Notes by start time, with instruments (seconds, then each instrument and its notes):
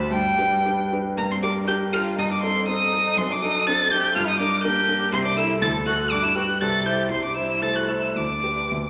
Already playing: grand piano D2 D4 F#4 C5
0.10 grand piano G2, cello G3, violin G5
0.38 grand piano D4 G4 B4
0.65 grand piano D4 G4 B4
0.92 grand piano D4 G4 B4
1.17 grand piano G2, cello A#3, violin A#5
1.30 cello C4, violin C6
1.42 cello D4, grand piano G4 A#4, violin D6
1.67 grand piano D4 G4 A#4, cello G4, violin G6
1.92 cello F4, grand piano G4 A#4, violin F6
2.18 grand piano G2, cello D#4, violin D#6
2.30 cello D4, violin D6
2.43 cello C4, grand piano D#4 A4, violin C6
2.68 grand piano C4 D#4 A4, cello D#4, violin D#6
2.93 grand piano D#4 A4
3.17 grand piano F#2, cello C4, violin C6
3.30 cello D4, violin D6
3.42 grand piano D4 A4, cello D#4, violin D#6
3.66 grand piano C4 D4 A4, cello A4, violin A6
3.91 grand piano D4 A4, cello G4, violin G6
4.15 grand piano G2, cello F4, violin F6
4.27 cello D#4, violin D#6
4.39 cello D4, grand piano D4 A#4, violin D6
4.64 grand piano A#3 D4 A#4, cello G4, violin G6
4.88 grand piano D4 A#4
5.13 grand piano C2, cello C4, violin C6
5.25 cello D4, violin D6
5.37 grand piano E4 A4, cello E4, violin E6
5.61 grand piano D2, cello A4, violin A6
5.86 grand piano F#4 A4, cello F#4, violin F#6
6.11 grand piano G2, cello D4, violin D6
6.23 cello E4, violin E6
6.36 cello F#4, grand piano G4 B4, violin F#6
6.61 grand piano C2, cello A4, violin A6
6.86 grand piano E4 C5, cello G4, violin G6
7.10 grand piano C2, cello C4, violin C6
7.23 cello D4, violin D6
7.36 cello E4, grand piano E4 C5, violin E6
7.61 grand piano A3 E4 C5, cello A4, violin A6
7.75 cello F#4, violin F#6
7.88 cello E4, grand piano E4 C5, violin E6
8.15 grand piano D2, cello D4, violin D6
8.43 grand piano G4 B4
8.71 grand piano D2